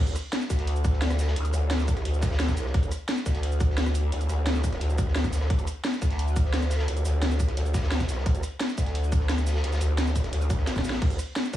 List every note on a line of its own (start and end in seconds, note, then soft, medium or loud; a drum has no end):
0.00 0.14 D2 loud
0.07 closed hi-hat soft
0.07 shaker soft
0.16 cross-stick soft
0.16 closed hi-hat medium
0.16 shaker medium
0.32 snare loud
0.32 closed hi-hat loud
0.32 closed hi-hat medium
0.41 snare soft
0.41 shaker soft
0.50 1.35 D2 loud
0.50 kick medium
0.50 snare soft
0.50 closed hi-hat medium
0.50 shaker medium
0.59 snare medium
0.59 closed hi-hat soft
0.67 closed hi-hat medium
0.76 shaker soft
0.85 kick loud
0.85 closed hi-hat medium
0.85 shaker medium
0.93 snare soft
1.01 snare loud
1.01 closed hi-hat medium
1.01 closed hi-hat loud
1.10 cross-stick medium
1.10 snare medium
1.10 closed hi-hat soft
1.10 shaker soft
1.19 snare loud
1.19 closed hi-hat medium
1.19 shaker medium
1.28 snare loud
1.28 closed hi-hat medium
1.36 1.52 D2 medium
1.36 closed hi-hat medium
1.36 closed hi-hat loud
1.45 closed hi-hat soft
1.45 shaker soft
1.53 2.04 D2 medium
1.53 cross-stick soft
1.53 closed hi-hat medium
1.53 shaker medium
1.70 snare loud
1.70 closed hi-hat medium
1.70 closed hi-hat loud
1.79 snare soft
1.79 shaker soft
1.88 kick medium
1.88 closed hi-hat medium
1.88 shaker medium
1.96 cross-stick soft
1.96 snare soft
1.96 closed hi-hat soft
2.05 2.56 D2 loud
2.05 closed hi-hat loud
2.14 shaker soft
2.21 kick loud
2.21 snare loud
2.21 closed hi-hat medium
2.21 shaker medium
2.31 cross-stick soft
2.31 snare loud
2.31 closed hi-hat medium
2.39 snare loud
2.39 closed hi-hat medium
2.48 kick medium
2.48 snare loud
2.48 closed hi-hat medium
2.48 closed hi-hat soft
2.48 shaker soft
2.57 2.73 C2 loud
2.57 snare medium
2.57 closed hi-hat medium
2.57 shaker medium
2.66 cross-stick soft
2.66 snare soft
2.74 2.90 D2 loud
2.74 kick loud
2.74 closed hi-hat loud
2.74 closed hi-hat medium
2.83 closed hi-hat soft
2.83 shaker soft
2.91 cross-stick soft
2.91 closed hi-hat medium
2.91 shaker medium
3.09 snare loud
3.09 closed hi-hat medium
3.09 closed hi-hat loud
3.17 snare soft
3.17 shaker soft
3.26 4.11 D2 loud
3.26 kick medium
3.26 snare soft
3.26 closed hi-hat medium
3.26 shaker medium
3.34 snare soft
3.34 closed hi-hat soft
3.43 closed hi-hat loud
3.43 closed hi-hat medium
3.52 shaker soft
3.60 kick loud
3.60 closed hi-hat medium
3.60 shaker medium
3.70 snare soft
3.78 snare loud
3.78 closed hi-hat medium
3.86 cross-stick medium
3.86 snare medium
3.86 closed hi-hat soft
3.86 shaker soft
3.94 closed hi-hat medium
3.94 shaker medium
4.12 4.28 D2 loud
4.12 closed hi-hat medium
4.21 closed hi-hat soft
4.21 shaker soft
4.29 4.80 D2 medium
4.29 cross-stick soft
4.29 closed hi-hat medium
4.29 shaker medium
4.46 snare loud
4.46 closed hi-hat medium
4.55 snare soft
4.55 shaker soft
4.64 kick medium
4.64 closed hi-hat medium
4.64 shaker medium
4.72 cross-stick soft
4.72 snare soft
4.72 closed hi-hat soft
4.81 5.49 D2 loud
4.81 closed hi-hat loud
4.81 closed hi-hat medium
4.90 shaker soft
4.98 kick loud
4.98 closed hi-hat medium
4.98 shaker medium
5.07 cross-stick soft
5.07 snare soft
5.16 snare loud
5.16 closed hi-hat medium
5.24 kick medium
5.24 snare medium
5.24 closed hi-hat soft
5.24 shaker soft
5.32 snare medium
5.32 closed hi-hat medium
5.32 shaker medium
5.41 cross-stick soft
5.41 snare medium
5.50 5.66 D2 medium
5.50 kick loud
5.50 closed hi-hat medium
5.59 closed hi-hat soft
5.59 shaker soft
5.67 cross-stick soft
5.67 closed hi-hat medium
5.67 shaker medium
5.84 snare loud
5.84 closed hi-hat medium
5.93 snare soft
5.93 shaker soft
6.01 6.87 D2 loud
6.01 kick medium
6.01 snare soft
6.01 closed hi-hat medium
6.01 shaker medium
6.10 snare medium
6.10 closed hi-hat soft
6.19 closed hi-hat medium
6.28 shaker soft
6.36 kick loud
6.36 closed hi-hat medium
6.36 shaker medium
6.45 snare soft
6.54 snare loud
6.54 closed hi-hat medium
6.54 closed hi-hat loud
6.62 cross-stick medium
6.62 snare medium
6.62 closed hi-hat soft
6.62 shaker soft
6.70 snare loud
6.70 closed hi-hat medium
6.70 shaker medium
6.79 snare loud
6.79 closed hi-hat medium
6.88 7.04 D2 medium
6.88 closed hi-hat loud
6.88 closed hi-hat medium
6.97 closed hi-hat soft
6.97 shaker soft
7.05 7.56 D2 loud
7.05 cross-stick soft
7.05 closed hi-hat medium
7.05 shaker medium
7.22 snare loud
7.22 closed hi-hat medium
7.30 snare soft
7.30 shaker soft
7.40 kick medium
7.40 closed hi-hat medium
7.40 shaker medium
7.48 cross-stick soft
7.48 snare soft
7.48 closed hi-hat soft
7.57 8.07 D2 loud
7.57 closed hi-hat medium
7.66 shaker soft
7.74 kick loud
7.74 snare loud
7.74 closed hi-hat medium
7.74 shaker medium
7.82 cross-stick soft
7.82 snare loud
7.82 closed hi-hat medium
7.92 snare loud
7.92 closed hi-hat medium
8.00 kick medium
8.00 snare loud
8.00 closed hi-hat soft
8.00 closed hi-hat medium
8.00 shaker soft
8.09 8.25 C2 loud
8.09 snare medium
8.09 closed hi-hat medium
8.09 shaker medium
8.17 cross-stick soft
8.17 snare soft
8.26 8.42 D2 medium
8.26 kick loud
8.26 closed hi-hat loud
8.26 closed hi-hat medium
8.35 closed hi-hat soft
8.35 shaker soft
8.43 cross-stick soft
8.43 closed hi-hat medium
8.43 shaker medium
8.60 snare loud
8.60 closed hi-hat loud
8.60 closed hi-hat medium
8.69 snare soft
8.69 shaker soft
8.77 9.63 D2 loud
8.77 kick medium
8.77 snare soft
8.77 closed hi-hat medium
8.77 shaker medium
8.86 snare soft
8.86 closed hi-hat soft
8.95 closed hi-hat loud
9.04 shaker soft
9.12 kick loud
9.12 closed hi-hat medium
9.12 shaker medium
9.20 snare soft
9.29 snare loud
9.29 closed hi-hat medium
9.38 cross-stick medium
9.38 snare soft
9.38 closed hi-hat soft
9.38 shaker soft
9.47 snare loud
9.47 closed hi-hat medium
9.47 shaker medium
9.55 snare loud
9.55 closed hi-hat medium
9.63 9.80 D2 loud
9.63 snare medium
9.63 closed hi-hat medium
9.63 closed hi-hat loud
9.72 snare loud
9.72 closed hi-hat soft
9.72 closed hi-hat medium
9.72 shaker soft
9.81 10.32 D2 loud
9.81 cross-stick soft
9.81 closed hi-hat medium
9.81 shaker medium
9.98 snare loud
9.98 closed hi-hat loud
10.07 snare soft
10.07 shaker soft
10.15 kick medium
10.15 closed hi-hat medium
10.15 shaker medium
10.24 cross-stick soft
10.24 snare soft
10.24 closed hi-hat soft
10.33 10.83 D2 loud
10.33 closed hi-hat medium
10.33 closed hi-hat loud
10.41 shaker soft
10.50 kick loud
10.50 closed hi-hat medium
10.50 shaker medium
10.58 cross-stick soft
10.58 snare soft
10.67 snare loud
10.67 snare medium
10.67 closed hi-hat medium
10.76 kick medium
10.76 snare medium
10.76 closed hi-hat soft
10.76 shaker soft
10.79 snare medium
10.85 11.00 A1 loud
10.85 snare loud
10.85 closed hi-hat medium
10.85 shaker medium
10.90 snare loud
10.92 snare loud
10.92 closed hi-hat medium
11.02 11.18 D2 loud
11.02 kick loud
11.02 closed hi-hat loud
11.02 closed hi-hat medium
11.02 crash medium
11.10 closed hi-hat soft
11.10 shaker soft
11.19 cross-stick soft
11.19 closed hi-hat medium
11.19 shaker medium
11.36 snare loud
11.36 closed hi-hat loud
11.36 closed hi-hat medium
11.44 snare soft
11.44 shaker soft
11.53 11.57 D2 loud
11.53 kick medium
11.53 closed hi-hat medium
11.53 shaker medium